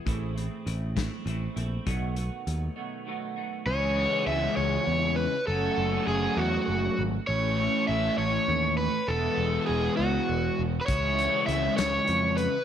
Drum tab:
HH |xxxxxx|xxx---|------|------|
SD |---o--|------|------|------|
BD |o--o--|o-----|------|------|

HH |------|------|xxxxxx|
SD |------|------|---o--|
BD |------|------|o-----|